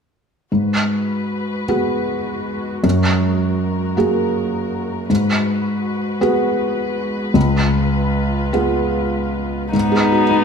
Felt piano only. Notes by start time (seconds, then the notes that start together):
0.52 G#2
1.68 B3 F#4 G#4
2.84 F#2
3.97 A#3 F#4 G#4
5.10 G#2
6.21 B3 F#4 G#4
7.34 C#2
8.53 B3 F4 G#4
9.73 G#2
9.92 G#4
10.12 F#4
10.31 B3